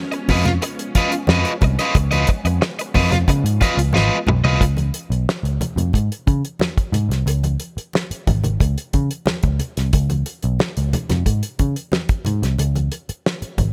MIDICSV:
0, 0, Header, 1, 7, 480
1, 0, Start_track
1, 0, Tempo, 665188
1, 1404, Time_signature, 4, 2, 24, 8
1, 9907, End_track
2, 0, Start_track
2, 0, Title_t, "Overdriven electric guitar"
2, 0, Program_c, 0, 29
2, 214, Note_on_c, 0, 65, 65
2, 218, Note_on_c, 0, 71, 76
2, 227, Note_on_c, 0, 75, 83
2, 321, Note_off_c, 0, 75, 0
2, 325, Note_off_c, 0, 71, 0
2, 364, Note_off_c, 0, 65, 0
2, 692, Note_on_c, 0, 65, 59
2, 702, Note_on_c, 0, 71, 61
2, 706, Note_on_c, 0, 75, 58
2, 798, Note_off_c, 0, 75, 0
2, 808, Note_off_c, 0, 71, 0
2, 809, Note_off_c, 0, 65, 0
2, 935, Note_on_c, 0, 65, 74
2, 938, Note_on_c, 0, 71, 86
2, 945, Note_on_c, 0, 75, 97
2, 1084, Note_off_c, 0, 65, 0
2, 1085, Note_off_c, 0, 71, 0
2, 1089, Note_off_c, 0, 75, 0
2, 1293, Note_on_c, 0, 75, 57
2, 1301, Note_on_c, 0, 71, 58
2, 1309, Note_on_c, 0, 65, 51
2, 1405, Note_off_c, 0, 65, 0
2, 1409, Note_off_c, 0, 71, 0
2, 1409, Note_off_c, 0, 75, 0
2, 1524, Note_on_c, 0, 75, 68
2, 1533, Note_on_c, 0, 71, 71
2, 1540, Note_on_c, 0, 65, 58
2, 1640, Note_off_c, 0, 65, 0
2, 1645, Note_off_c, 0, 71, 0
2, 1649, Note_off_c, 0, 75, 0
2, 2127, Note_on_c, 0, 65, 77
2, 2131, Note_on_c, 0, 71, 78
2, 2140, Note_on_c, 0, 75, 81
2, 2238, Note_off_c, 0, 75, 0
2, 2249, Note_off_c, 0, 71, 0
2, 2280, Note_off_c, 0, 65, 0
2, 2604, Note_on_c, 0, 65, 62
2, 2614, Note_on_c, 0, 71, 59
2, 2618, Note_on_c, 0, 75, 71
2, 2715, Note_off_c, 0, 75, 0
2, 2724, Note_off_c, 0, 71, 0
2, 2725, Note_off_c, 0, 65, 0
2, 2844, Note_on_c, 0, 65, 98
2, 2852, Note_on_c, 0, 71, 88
2, 2854, Note_on_c, 0, 75, 83
2, 2999, Note_off_c, 0, 65, 0
2, 3003, Note_off_c, 0, 71, 0
2, 3004, Note_off_c, 0, 75, 0
2, 3204, Note_on_c, 0, 75, 67
2, 3215, Note_on_c, 0, 71, 55
2, 3218, Note_on_c, 0, 65, 56
2, 3326, Note_off_c, 0, 75, 0
2, 3331, Note_off_c, 0, 71, 0
2, 3332, Note_off_c, 0, 65, 0
2, 9907, End_track
3, 0, Start_track
3, 0, Title_t, "String machine"
3, 0, Program_c, 1, 50
3, 0, Note_on_c, 1, 53, 82
3, 0, Note_on_c, 1, 56, 73
3, 0, Note_on_c, 1, 59, 82
3, 0, Note_on_c, 1, 61, 93
3, 3292, Note_off_c, 1, 59, 0
3, 3294, Note_off_c, 1, 53, 0
3, 3294, Note_off_c, 1, 56, 0
3, 3296, Note_off_c, 1, 61, 0
3, 9907, End_track
4, 0, Start_track
4, 0, Title_t, "Picked electric bass"
4, 0, Program_c, 2, 34
4, 207, Note_on_c, 2, 41, 96
4, 412, Note_off_c, 2, 41, 0
4, 928, Note_on_c, 2, 41, 97
4, 1030, Note_off_c, 2, 41, 0
4, 1166, Note_on_c, 2, 36, 89
4, 1269, Note_off_c, 2, 36, 0
4, 1409, Note_on_c, 2, 37, 99
4, 1613, Note_off_c, 2, 37, 0
4, 1767, Note_on_c, 2, 41, 78
4, 1869, Note_off_c, 2, 41, 0
4, 2128, Note_on_c, 2, 41, 104
4, 2333, Note_off_c, 2, 41, 0
4, 2367, Note_on_c, 2, 49, 101
4, 2469, Note_off_c, 2, 49, 0
4, 2481, Note_on_c, 2, 44, 87
4, 2586, Note_off_c, 2, 44, 0
4, 2723, Note_on_c, 2, 37, 83
4, 2827, Note_off_c, 2, 37, 0
4, 2844, Note_on_c, 2, 32, 90
4, 2948, Note_off_c, 2, 32, 0
4, 3082, Note_on_c, 2, 35, 88
4, 3187, Note_off_c, 2, 35, 0
4, 3204, Note_on_c, 2, 36, 87
4, 3308, Note_off_c, 2, 36, 0
4, 3323, Note_on_c, 2, 37, 99
4, 3531, Note_off_c, 2, 37, 0
4, 3682, Note_on_c, 2, 35, 81
4, 3787, Note_off_c, 2, 35, 0
4, 3920, Note_on_c, 2, 37, 76
4, 4027, Note_off_c, 2, 37, 0
4, 4158, Note_on_c, 2, 41, 76
4, 4266, Note_off_c, 2, 41, 0
4, 4286, Note_on_c, 2, 44, 84
4, 4390, Note_off_c, 2, 44, 0
4, 4525, Note_on_c, 2, 49, 81
4, 4630, Note_off_c, 2, 49, 0
4, 4997, Note_on_c, 2, 44, 88
4, 5106, Note_off_c, 2, 44, 0
4, 5116, Note_on_c, 2, 36, 78
4, 5226, Note_off_c, 2, 36, 0
4, 5239, Note_on_c, 2, 37, 91
4, 5451, Note_off_c, 2, 37, 0
4, 5970, Note_on_c, 2, 32, 86
4, 6177, Note_off_c, 2, 32, 0
4, 6211, Note_on_c, 2, 37, 80
4, 6315, Note_off_c, 2, 37, 0
4, 6449, Note_on_c, 2, 49, 87
4, 6554, Note_off_c, 2, 49, 0
4, 6809, Note_on_c, 2, 37, 75
4, 6914, Note_off_c, 2, 37, 0
4, 7054, Note_on_c, 2, 36, 79
4, 7156, Note_off_c, 2, 36, 0
4, 7167, Note_on_c, 2, 37, 104
4, 7376, Note_off_c, 2, 37, 0
4, 7533, Note_on_c, 2, 35, 92
4, 7636, Note_off_c, 2, 35, 0
4, 7775, Note_on_c, 2, 37, 83
4, 7876, Note_off_c, 2, 37, 0
4, 8010, Note_on_c, 2, 41, 76
4, 8114, Note_off_c, 2, 41, 0
4, 8124, Note_on_c, 2, 44, 84
4, 8230, Note_off_c, 2, 44, 0
4, 8366, Note_on_c, 2, 49, 84
4, 8471, Note_off_c, 2, 49, 0
4, 8846, Note_on_c, 2, 44, 85
4, 8950, Note_off_c, 2, 44, 0
4, 8965, Note_on_c, 2, 36, 69
4, 9069, Note_off_c, 2, 36, 0
4, 9083, Note_on_c, 2, 37, 94
4, 9291, Note_off_c, 2, 37, 0
4, 9799, Note_on_c, 2, 32, 81
4, 9907, Note_off_c, 2, 32, 0
4, 9907, End_track
5, 0, Start_track
5, 0, Title_t, "Muted overdriven electric guitar strokes"
5, 84, Note_on_c, 9, 29, 40
5, 156, Note_off_c, 9, 29, 0
5, 330, Note_on_c, 9, 29, 42
5, 402, Note_off_c, 9, 29, 0
5, 448, Note_on_c, 9, 29, 38
5, 520, Note_off_c, 9, 29, 0
5, 807, Note_on_c, 9, 29, 50
5, 879, Note_off_c, 9, 29, 0
5, 1171, Note_on_c, 9, 29, 40
5, 1243, Note_off_c, 9, 29, 0
5, 1414, Note_on_c, 9, 29, 46
5, 1486, Note_off_c, 9, 29, 0
5, 1649, Note_on_c, 9, 29, 44
5, 1721, Note_off_c, 9, 29, 0
5, 1771, Note_on_c, 9, 29, 48
5, 1843, Note_off_c, 9, 29, 0
5, 1887, Note_on_c, 9, 29, 47
5, 1959, Note_off_c, 9, 29, 0
5, 2014, Note_on_c, 9, 29, 47
5, 2087, Note_off_c, 9, 29, 0
5, 2246, Note_on_c, 9, 29, 53
5, 2318, Note_off_c, 9, 29, 0
5, 2368, Note_on_c, 9, 29, 46
5, 2440, Note_off_c, 9, 29, 0
5, 2723, Note_on_c, 9, 29, 47
5, 2795, Note_off_c, 9, 29, 0
5, 3085, Note_on_c, 9, 29, 49
5, 3157, Note_off_c, 9, 29, 0
5, 9907, End_track
6, 0, Start_track
6, 0, Title_t, "Muted picked electric bass strokes"
6, 5606, Note_on_c, 9, 29, 44
6, 5678, Note_off_c, 9, 29, 0
6, 5851, Note_on_c, 9, 29, 44
6, 5923, Note_off_c, 9, 29, 0
6, 6694, Note_on_c, 9, 29, 40
6, 6766, Note_off_c, 9, 29, 0
6, 9448, Note_on_c, 9, 29, 44
6, 9520, Note_off_c, 9, 29, 0
6, 9684, Note_on_c, 9, 29, 45
6, 9756, Note_off_c, 9, 29, 0
6, 9907, End_track
7, 0, Start_track
7, 0, Title_t, "Drums"
7, 88, Note_on_c, 9, 42, 49
7, 161, Note_off_c, 9, 42, 0
7, 207, Note_on_c, 9, 46, 67
7, 207, Note_on_c, 9, 63, 77
7, 207, Note_on_c, 9, 64, 80
7, 209, Note_on_c, 9, 36, 88
7, 279, Note_off_c, 9, 46, 0
7, 279, Note_off_c, 9, 63, 0
7, 279, Note_off_c, 9, 64, 0
7, 281, Note_off_c, 9, 36, 0
7, 326, Note_on_c, 9, 64, 91
7, 329, Note_on_c, 9, 42, 53
7, 332, Note_on_c, 9, 38, 39
7, 398, Note_off_c, 9, 64, 0
7, 401, Note_off_c, 9, 42, 0
7, 404, Note_off_c, 9, 38, 0
7, 446, Note_on_c, 9, 62, 31
7, 450, Note_on_c, 9, 42, 98
7, 518, Note_off_c, 9, 62, 0
7, 522, Note_off_c, 9, 42, 0
7, 571, Note_on_c, 9, 42, 56
7, 644, Note_off_c, 9, 42, 0
7, 685, Note_on_c, 9, 42, 69
7, 685, Note_on_c, 9, 63, 66
7, 688, Note_on_c, 9, 36, 80
7, 757, Note_off_c, 9, 63, 0
7, 758, Note_off_c, 9, 42, 0
7, 760, Note_off_c, 9, 36, 0
7, 807, Note_on_c, 9, 42, 51
7, 879, Note_off_c, 9, 42, 0
7, 917, Note_on_c, 9, 62, 40
7, 917, Note_on_c, 9, 63, 77
7, 930, Note_on_c, 9, 38, 104
7, 989, Note_off_c, 9, 62, 0
7, 989, Note_off_c, 9, 63, 0
7, 1003, Note_off_c, 9, 38, 0
7, 1047, Note_on_c, 9, 42, 57
7, 1119, Note_off_c, 9, 42, 0
7, 1161, Note_on_c, 9, 64, 68
7, 1167, Note_on_c, 9, 42, 82
7, 1168, Note_on_c, 9, 36, 113
7, 1234, Note_off_c, 9, 64, 0
7, 1239, Note_off_c, 9, 42, 0
7, 1240, Note_off_c, 9, 36, 0
7, 1291, Note_on_c, 9, 42, 57
7, 1293, Note_on_c, 9, 38, 33
7, 1363, Note_off_c, 9, 42, 0
7, 1365, Note_off_c, 9, 38, 0
7, 1405, Note_on_c, 9, 62, 37
7, 1407, Note_on_c, 9, 36, 117
7, 1408, Note_on_c, 9, 42, 99
7, 1477, Note_off_c, 9, 62, 0
7, 1480, Note_off_c, 9, 36, 0
7, 1480, Note_off_c, 9, 42, 0
7, 1527, Note_on_c, 9, 63, 75
7, 1528, Note_on_c, 9, 42, 48
7, 1599, Note_off_c, 9, 63, 0
7, 1600, Note_off_c, 9, 42, 0
7, 1639, Note_on_c, 9, 42, 67
7, 1651, Note_on_c, 9, 36, 84
7, 1711, Note_off_c, 9, 42, 0
7, 1723, Note_off_c, 9, 36, 0
7, 1770, Note_on_c, 9, 42, 48
7, 1842, Note_off_c, 9, 42, 0
7, 1891, Note_on_c, 9, 38, 115
7, 1963, Note_off_c, 9, 38, 0
7, 2014, Note_on_c, 9, 42, 54
7, 2086, Note_off_c, 9, 42, 0
7, 2124, Note_on_c, 9, 63, 90
7, 2124, Note_on_c, 9, 64, 85
7, 2130, Note_on_c, 9, 36, 89
7, 2132, Note_on_c, 9, 46, 69
7, 2196, Note_off_c, 9, 63, 0
7, 2196, Note_off_c, 9, 64, 0
7, 2202, Note_off_c, 9, 36, 0
7, 2204, Note_off_c, 9, 46, 0
7, 2247, Note_on_c, 9, 64, 99
7, 2252, Note_on_c, 9, 42, 50
7, 2255, Note_on_c, 9, 38, 38
7, 2319, Note_off_c, 9, 64, 0
7, 2324, Note_off_c, 9, 42, 0
7, 2327, Note_off_c, 9, 38, 0
7, 2365, Note_on_c, 9, 62, 36
7, 2367, Note_on_c, 9, 36, 86
7, 2372, Note_on_c, 9, 42, 100
7, 2437, Note_off_c, 9, 62, 0
7, 2439, Note_off_c, 9, 36, 0
7, 2444, Note_off_c, 9, 42, 0
7, 2496, Note_on_c, 9, 42, 60
7, 2568, Note_off_c, 9, 42, 0
7, 2604, Note_on_c, 9, 62, 43
7, 2604, Note_on_c, 9, 63, 63
7, 2609, Note_on_c, 9, 36, 83
7, 2613, Note_on_c, 9, 42, 69
7, 2676, Note_off_c, 9, 62, 0
7, 2676, Note_off_c, 9, 63, 0
7, 2681, Note_off_c, 9, 36, 0
7, 2685, Note_off_c, 9, 42, 0
7, 2734, Note_on_c, 9, 42, 58
7, 2806, Note_off_c, 9, 42, 0
7, 2833, Note_on_c, 9, 63, 87
7, 2855, Note_on_c, 9, 38, 60
7, 2906, Note_off_c, 9, 63, 0
7, 2927, Note_off_c, 9, 38, 0
7, 3079, Note_on_c, 9, 62, 33
7, 3079, Note_on_c, 9, 64, 68
7, 3092, Note_on_c, 9, 45, 98
7, 3151, Note_off_c, 9, 62, 0
7, 3151, Note_off_c, 9, 64, 0
7, 3164, Note_off_c, 9, 45, 0
7, 3209, Note_on_c, 9, 43, 80
7, 3281, Note_off_c, 9, 43, 0
7, 3326, Note_on_c, 9, 36, 106
7, 3331, Note_on_c, 9, 42, 103
7, 3398, Note_off_c, 9, 36, 0
7, 3403, Note_off_c, 9, 42, 0
7, 3440, Note_on_c, 9, 63, 68
7, 3449, Note_on_c, 9, 42, 40
7, 3512, Note_off_c, 9, 63, 0
7, 3521, Note_off_c, 9, 42, 0
7, 3564, Note_on_c, 9, 42, 65
7, 3637, Note_off_c, 9, 42, 0
7, 3693, Note_on_c, 9, 42, 41
7, 3765, Note_off_c, 9, 42, 0
7, 3817, Note_on_c, 9, 38, 110
7, 3889, Note_off_c, 9, 38, 0
7, 3935, Note_on_c, 9, 42, 48
7, 4007, Note_off_c, 9, 42, 0
7, 4047, Note_on_c, 9, 62, 35
7, 4047, Note_on_c, 9, 63, 73
7, 4047, Note_on_c, 9, 64, 80
7, 4052, Note_on_c, 9, 42, 66
7, 4119, Note_off_c, 9, 62, 0
7, 4119, Note_off_c, 9, 63, 0
7, 4119, Note_off_c, 9, 64, 0
7, 4125, Note_off_c, 9, 42, 0
7, 4168, Note_on_c, 9, 64, 79
7, 4172, Note_on_c, 9, 42, 52
7, 4240, Note_off_c, 9, 64, 0
7, 4245, Note_off_c, 9, 42, 0
7, 4281, Note_on_c, 9, 62, 27
7, 4286, Note_on_c, 9, 36, 80
7, 4295, Note_on_c, 9, 42, 85
7, 4353, Note_off_c, 9, 62, 0
7, 4358, Note_off_c, 9, 36, 0
7, 4367, Note_off_c, 9, 42, 0
7, 4416, Note_on_c, 9, 42, 51
7, 4488, Note_off_c, 9, 42, 0
7, 4525, Note_on_c, 9, 63, 49
7, 4528, Note_on_c, 9, 36, 88
7, 4531, Note_on_c, 9, 42, 60
7, 4597, Note_off_c, 9, 63, 0
7, 4600, Note_off_c, 9, 36, 0
7, 4603, Note_off_c, 9, 42, 0
7, 4652, Note_on_c, 9, 42, 47
7, 4724, Note_off_c, 9, 42, 0
7, 4758, Note_on_c, 9, 62, 35
7, 4758, Note_on_c, 9, 63, 72
7, 4772, Note_on_c, 9, 38, 91
7, 4831, Note_off_c, 9, 62, 0
7, 4831, Note_off_c, 9, 63, 0
7, 4844, Note_off_c, 9, 38, 0
7, 4889, Note_on_c, 9, 36, 98
7, 4890, Note_on_c, 9, 42, 51
7, 4961, Note_off_c, 9, 36, 0
7, 4962, Note_off_c, 9, 42, 0
7, 5001, Note_on_c, 9, 64, 62
7, 5008, Note_on_c, 9, 42, 81
7, 5073, Note_off_c, 9, 64, 0
7, 5081, Note_off_c, 9, 42, 0
7, 5134, Note_on_c, 9, 42, 51
7, 5136, Note_on_c, 9, 38, 28
7, 5206, Note_off_c, 9, 42, 0
7, 5208, Note_off_c, 9, 38, 0
7, 5245, Note_on_c, 9, 62, 35
7, 5251, Note_on_c, 9, 42, 98
7, 5317, Note_off_c, 9, 62, 0
7, 5323, Note_off_c, 9, 42, 0
7, 5364, Note_on_c, 9, 63, 65
7, 5368, Note_on_c, 9, 42, 41
7, 5437, Note_off_c, 9, 63, 0
7, 5440, Note_off_c, 9, 42, 0
7, 5481, Note_on_c, 9, 42, 60
7, 5554, Note_off_c, 9, 42, 0
7, 5614, Note_on_c, 9, 42, 42
7, 5686, Note_off_c, 9, 42, 0
7, 5725, Note_on_c, 9, 62, 34
7, 5739, Note_on_c, 9, 38, 93
7, 5797, Note_off_c, 9, 62, 0
7, 5811, Note_off_c, 9, 38, 0
7, 5853, Note_on_c, 9, 42, 51
7, 5925, Note_off_c, 9, 42, 0
7, 5970, Note_on_c, 9, 62, 38
7, 5970, Note_on_c, 9, 63, 75
7, 5970, Note_on_c, 9, 64, 70
7, 5971, Note_on_c, 9, 36, 95
7, 5971, Note_on_c, 9, 42, 74
7, 6042, Note_off_c, 9, 62, 0
7, 6042, Note_off_c, 9, 63, 0
7, 6042, Note_off_c, 9, 64, 0
7, 6043, Note_off_c, 9, 36, 0
7, 6043, Note_off_c, 9, 42, 0
7, 6086, Note_on_c, 9, 64, 81
7, 6092, Note_on_c, 9, 42, 47
7, 6159, Note_off_c, 9, 64, 0
7, 6164, Note_off_c, 9, 42, 0
7, 6206, Note_on_c, 9, 62, 30
7, 6209, Note_on_c, 9, 36, 82
7, 6214, Note_on_c, 9, 42, 96
7, 6278, Note_off_c, 9, 62, 0
7, 6281, Note_off_c, 9, 36, 0
7, 6286, Note_off_c, 9, 42, 0
7, 6333, Note_on_c, 9, 42, 56
7, 6406, Note_off_c, 9, 42, 0
7, 6446, Note_on_c, 9, 42, 59
7, 6447, Note_on_c, 9, 63, 58
7, 6450, Note_on_c, 9, 36, 82
7, 6518, Note_off_c, 9, 42, 0
7, 6519, Note_off_c, 9, 63, 0
7, 6522, Note_off_c, 9, 36, 0
7, 6571, Note_on_c, 9, 42, 53
7, 6643, Note_off_c, 9, 42, 0
7, 6679, Note_on_c, 9, 62, 36
7, 6679, Note_on_c, 9, 63, 66
7, 6689, Note_on_c, 9, 38, 101
7, 6751, Note_off_c, 9, 62, 0
7, 6751, Note_off_c, 9, 63, 0
7, 6762, Note_off_c, 9, 38, 0
7, 6802, Note_on_c, 9, 42, 47
7, 6809, Note_on_c, 9, 36, 91
7, 6875, Note_off_c, 9, 42, 0
7, 6881, Note_off_c, 9, 36, 0
7, 6922, Note_on_c, 9, 64, 55
7, 6924, Note_on_c, 9, 42, 74
7, 6994, Note_off_c, 9, 64, 0
7, 6997, Note_off_c, 9, 42, 0
7, 7051, Note_on_c, 9, 42, 51
7, 7053, Note_on_c, 9, 38, 27
7, 7123, Note_off_c, 9, 42, 0
7, 7125, Note_off_c, 9, 38, 0
7, 7165, Note_on_c, 9, 42, 96
7, 7168, Note_on_c, 9, 36, 104
7, 7168, Note_on_c, 9, 62, 37
7, 7237, Note_off_c, 9, 42, 0
7, 7240, Note_off_c, 9, 36, 0
7, 7240, Note_off_c, 9, 62, 0
7, 7286, Note_on_c, 9, 42, 39
7, 7286, Note_on_c, 9, 63, 74
7, 7358, Note_off_c, 9, 42, 0
7, 7358, Note_off_c, 9, 63, 0
7, 7403, Note_on_c, 9, 42, 65
7, 7404, Note_on_c, 9, 62, 34
7, 7475, Note_off_c, 9, 42, 0
7, 7476, Note_off_c, 9, 62, 0
7, 7523, Note_on_c, 9, 42, 40
7, 7595, Note_off_c, 9, 42, 0
7, 7645, Note_on_c, 9, 62, 34
7, 7650, Note_on_c, 9, 38, 108
7, 7717, Note_off_c, 9, 62, 0
7, 7722, Note_off_c, 9, 38, 0
7, 7769, Note_on_c, 9, 42, 49
7, 7841, Note_off_c, 9, 42, 0
7, 7889, Note_on_c, 9, 63, 72
7, 7889, Note_on_c, 9, 64, 83
7, 7890, Note_on_c, 9, 42, 71
7, 7961, Note_off_c, 9, 63, 0
7, 7961, Note_off_c, 9, 64, 0
7, 7962, Note_off_c, 9, 42, 0
7, 8005, Note_on_c, 9, 64, 90
7, 8007, Note_on_c, 9, 42, 50
7, 8010, Note_on_c, 9, 38, 35
7, 8078, Note_off_c, 9, 64, 0
7, 8079, Note_off_c, 9, 42, 0
7, 8082, Note_off_c, 9, 38, 0
7, 8125, Note_on_c, 9, 36, 80
7, 8127, Note_on_c, 9, 42, 95
7, 8197, Note_off_c, 9, 36, 0
7, 8199, Note_off_c, 9, 42, 0
7, 8246, Note_on_c, 9, 42, 54
7, 8318, Note_off_c, 9, 42, 0
7, 8364, Note_on_c, 9, 42, 58
7, 8364, Note_on_c, 9, 63, 55
7, 8367, Note_on_c, 9, 36, 72
7, 8436, Note_off_c, 9, 42, 0
7, 8436, Note_off_c, 9, 63, 0
7, 8439, Note_off_c, 9, 36, 0
7, 8488, Note_on_c, 9, 42, 47
7, 8560, Note_off_c, 9, 42, 0
7, 8599, Note_on_c, 9, 63, 82
7, 8609, Note_on_c, 9, 38, 90
7, 8671, Note_off_c, 9, 63, 0
7, 8681, Note_off_c, 9, 38, 0
7, 8723, Note_on_c, 9, 42, 52
7, 8727, Note_on_c, 9, 36, 99
7, 8795, Note_off_c, 9, 42, 0
7, 8799, Note_off_c, 9, 36, 0
7, 8837, Note_on_c, 9, 62, 32
7, 8837, Note_on_c, 9, 64, 62
7, 8848, Note_on_c, 9, 42, 76
7, 8909, Note_off_c, 9, 62, 0
7, 8909, Note_off_c, 9, 64, 0
7, 8920, Note_off_c, 9, 42, 0
7, 8971, Note_on_c, 9, 42, 53
7, 8973, Note_on_c, 9, 38, 30
7, 9043, Note_off_c, 9, 42, 0
7, 9045, Note_off_c, 9, 38, 0
7, 9081, Note_on_c, 9, 62, 39
7, 9087, Note_on_c, 9, 42, 96
7, 9153, Note_off_c, 9, 62, 0
7, 9159, Note_off_c, 9, 42, 0
7, 9203, Note_on_c, 9, 63, 64
7, 9207, Note_on_c, 9, 42, 42
7, 9276, Note_off_c, 9, 63, 0
7, 9280, Note_off_c, 9, 42, 0
7, 9320, Note_on_c, 9, 42, 70
7, 9392, Note_off_c, 9, 42, 0
7, 9446, Note_on_c, 9, 42, 47
7, 9518, Note_off_c, 9, 42, 0
7, 9571, Note_on_c, 9, 38, 116
7, 9643, Note_off_c, 9, 38, 0
7, 9685, Note_on_c, 9, 42, 44
7, 9757, Note_off_c, 9, 42, 0
7, 9799, Note_on_c, 9, 63, 80
7, 9799, Note_on_c, 9, 64, 76
7, 9801, Note_on_c, 9, 36, 86
7, 9801, Note_on_c, 9, 42, 67
7, 9871, Note_off_c, 9, 63, 0
7, 9871, Note_off_c, 9, 64, 0
7, 9873, Note_off_c, 9, 36, 0
7, 9874, Note_off_c, 9, 42, 0
7, 9907, End_track
0, 0, End_of_file